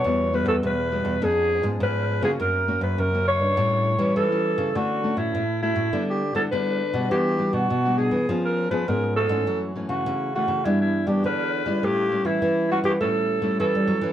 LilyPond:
<<
  \new Staff \with { instrumentName = "Alto saxophone" } { \time 4/4 \key a \mixolydian \tempo 4 = 102 cis''8 b'16 a'16 b'4 gis'8. r16 b'8. gis'16 | ais'8. b'16 ais'8 cis''4. a'4 | \key d \major fis'8. e'8. e'8. g'8 a'16 b'4 | g'8. fis'8. gis'8. bes'8 b'16 bes'8 a'8~ |
a'16 r8 fis'8. fis'8 e'16 e'8 g'16 b'4 | g'8. e'8. fis'16 g'16 a'4 a'4 | }
  \new Staff \with { instrumentName = "Nylon-string guitar" } { \time 4/4 \key a \mixolydian << { <g b fis'>8 <g b fis'>8. r16 <g b fis'>8 <b cis' gis'>8. <b cis' gis'>4 <ais cis' fis'>16~ | <ais cis' fis'>8 <ais cis' fis'>8. <ais cis' fis'>8. <g cis' e'>8. <g cis' e'>8 <g cis' e'>8. | \key d \major <a cis' fis'>8 <a cis' fis'>8. r16 <a cis' fis'>8 <g b e'>8 r16 <g b e'>16 <g b e'>8 r16 <g d' fis'>16~ | <g d' fis'>8 <g d' fis'>8 r16 <g d' fis'>16 <g d' fis'>16 r16 <b cis' gis'>8. <b cis' gis'>16 <b cis' gis'>8 r16 <e a cis'>16~ |
<e a cis'>8 <e a cis'>4 <e a cis'>8 <e b d'>8. <e b d'>4 <g cis' e'>16~ | <g cis' e'>8 <g cis' e'>4 <g cis' e'>8 <g cis' e'>8. <g cis' e'>4 <fis cis' e'>16 | } \\ { e4 b,4 eis4 eis4 | fis4 cis4 a,4 e4 | d4 a,4 d4 d4 | e4 b,4 eis4 eis4 |
fis,4 cis4 g,4 d4 | a,4 e4 a,4 e4 | } >> }
  \new Staff \with { instrumentName = "Nylon-string guitar" } { \clef bass \time 4/4 \key a \mixolydian e,8. e,16 e,8. e,16 eis,8. gis,16 gis,8. cis16 | fis,8. fis,16 fis,8. g,16 a,8. e16 e8. cis16 | \key d \major d8. a,16 a,8. a,16 d8. d16 d8. b,16 | e8. b,16 b,8. e16 eis8. eis16 gis,8. gis,16 |
fis8. cis16 cis8. cis16 g8. g16 d8. g16 | a8. e16 e8. e16 a8. a16 e16 g16 fis16 e16 | }
>>